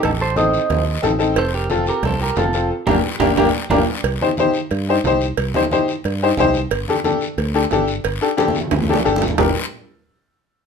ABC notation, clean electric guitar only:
X:1
M:4/4
L:1/8
Q:1/4=180
K:Gm
V:1 name="Clean electric guitar"
[EA] [Ac] [ce]3 z3 | [Ac] [GB] [FA] [GB] [Ac] [GB] [FA]2 | z [DGB] z [DGB] [DGB] z [DGB] z | z8 |
z8 | z8 | z8 | z8 |]